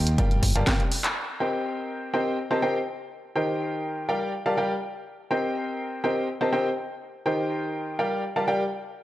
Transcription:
Already playing: D#2 D#3 G4 A#4 C5 D#5 G5
0.07 closed hi-hat
0.18 G1 G3 G4 A#4 D5 F5 G5, kick, closed hi-hat
0.31 closed hi-hat
0.43 kick, open hi-hat
0.55 G1 G3 G4 A#4 D5 F5 A5, closed hi-hat
0.67 G3 G4 A#4 D5 F5 G5, kick, snare, clap, closed hi-hat
0.80 closed hi-hat
0.92 open hi-hat
1.04 clap, closed hi-hat
1.40 C4 G4 A#4 C5 D#5 G5
2.14 C4 G4 A#4 C5 D#5 G5
2.51 C4 G4 A#4 C5 D#5 A5
2.62 C4 G4 A#4 C5 D#5 G5
3.36 D#3 G4 A#4 C5 D#5 G5
4.09 G3 G4 A#4 D5 F5 G5
4.46 G3 G4 A#4 D5 F5 A5
4.57 G3 G4 A#4 D5 F5 G5
5.31 C4 G4 A#4 C5 D#5 G5
6.04 C4 G4 A#4 C5 D#5 G5
6.41 C4 G4 A#4 C5 D#5 A5
6.52 C4 G4 A#4 C5 D#5 G5
7.26 D#3 G4 A#4 C5 D#5 G5
7.99 G3 G4 A#4 D5 F5 G5
8.36 G3 G4 A#4 D5 F5 A5
8.48 G3 G4 A#4 D5 F5 G5

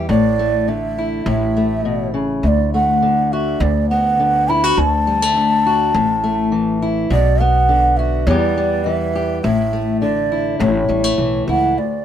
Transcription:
Already playing: G3
0.09 A1 A2 D5
0.39 A3
0.68 D3 E5
0.98 E4
1.26 A1 A2 E5
1.57 A3
1.85 B2
2.14 C#3
2.43 D2 E5
2.47 D5
2.73 A3 F#5
3.02 D3
3.32 F#4 E5
3.60 D2 D5
3.89 B3 F#5
4.20 D3
4.49 E4 B5
4.64 F#4
4.69 B5
4.77 D2 A5
5.07 G3
5.22 A3
5.36 D3
5.67 F#4
5.94 A1 A2
6.24 A3
6.52 E3
6.82 E4
7.10 B1 B2 D5
7.40 B3 F#5
7.69 D3
7.96 F#4 E5
8.27 E2 E3 G3 B3 G4 D5
8.58 G3
8.84 E3 E5
9.15 G4
9.42 A1 A2 E5
9.73 A3
10.01 D3 D5
10.32 E4
10.60 A1 A2 C#5
10.88 A1 G3
11.04 A3
11.18 B1 E3
11.48 C#2 E4 F#5
11.77 D2 D5

